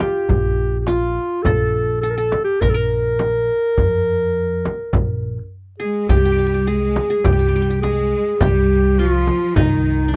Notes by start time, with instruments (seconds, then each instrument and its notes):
Already playing: qanun F4
0.00 qanun G4, clarinet G4, darbuka tek, frame drum
0.15 darbuka ka
0.29 upright bass A#1, darbuka dum, frame drum
0.80 clarinet G4
0.87 clarinet F4, qanun F4, darbuka tek, frame drum
1.42 upright bass A#1, clarinet A4, qanun A4, darbuka dum, frame drum
1.60 darbuka ka
1.74 darbuka ka
2.00 clarinet A4, qanun A4
2.10 clarinet A#4
2.15 clarinet A4, qanun A4
2.32 darbuka tek, frame drum
2.44 clarinet G4, darbuka ka
2.60 upright bass A#1, clarinet A#4, qanun A#4, darbuka dum, frame drum
2.69 clarinet A4
2.74 qanun A#4, clarinet A#4
3.19 darbuka tek, frame drum
3.78 upright bass F2, frame drum, darbuka dum
3.93 darbuka ka
4.07 darbuka ka
4.65 darbuka tek, frame drum
4.80 darbuka ka
4.93 upright bass A#1, frame drum, darbuka dum
5.23 darbuka ka
5.38 darbuka ka
5.79 cello section G#3, clarinet G#4, qanun G#4
6.08 upright bass C2, cello section G3, clarinet G4, qanun G4, frame drum, darbuka dum
6.17 qanun G4
6.25 qanun G4
6.32 qanun G4
6.39 qanun G4
6.47 qanun G4
6.54 qanun G4
6.67 cello section G#3, qanun G#4, clarinet G#4
6.96 darbuka tek, frame drum
7.10 qanun G#4, darbuka ka
7.17 cello section G#3
7.24 upright bass C2, cello section G3, clarinet G4, qanun G4, frame drum, darbuka dum
7.33 qanun G4
7.39 qanun G4
7.48 qanun G4
7.55 qanun G4, darbuka ka
7.62 qanun G4
7.70 qanun G4, darbuka ka
7.82 cello section G#3, clarinet G#4, qanun G#4, darbuka tek, frame drum
8.12 darbuka ka
8.27 darbuka ka
8.40 upright bass C2, cello section G3, clarinet G4, qanun G4, frame drum, darbuka dum
8.98 cello section F3, clarinet F4, qanun F4
9.27 frame drum
9.55 upright bass C2, cello section D#3, clarinet D#4, qanun D#4, frame drum, darbuka dum
9.85 darbuka ka
10.00 darbuka ka
10.08 qanun D4
10.13 clarinet D#4